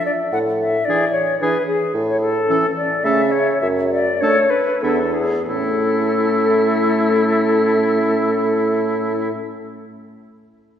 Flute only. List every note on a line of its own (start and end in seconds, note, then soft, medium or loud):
0.06 0.12 D5 soft
0.33 0.39 F#5 medium
0.59 0.86 E5 soft
0.85 1.11 D5 medium
1.12 1.39 C#5 soft
1.40 1.66 B4 medium
1.67 1.93 G#4 medium
2.08 2.21 C#5 medium
2.21 2.75 A4 medium
2.77 3.06 D5 medium
3.04 3.33 E5 medium
3.31 3.60 C#5 medium
3.61 3.68 E5 medium
3.90 4.22 D5 medium
4.21 4.52 C#5 medium
4.50 4.84 B4 medium
4.82 5.15 A4 medium
5.14 5.47 G#4 soft
5.47 9.29 A4 soft